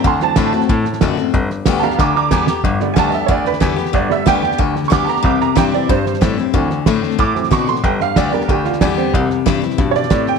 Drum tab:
HH |----p-------p---|----p-------p---|----p-------p---|----p-------p---|
SD |o-o-o-ooo-ooo-o-|o-o-o-ooo---o-o-|o-o-o-o-o-ooo-oo|o-o-o-ooo-ooo-oo|
BD |o---o---o---o---|o---o---o---o---|o---o---o---o---|o---o---o---o---|

HH |----p-------p---|----p-------p---|----p-------p---|----p-------p---|
SD |o-o-o-o-o-ooo-o-|o-o-o-ooo-ooo-oo|o-o-o-ooo-ooo-o-|o-o-o-ooo-ooo-oo|
BD |o---o---o---o---|o---o---o---o---|o---o---o---o---|o---o---o---o---|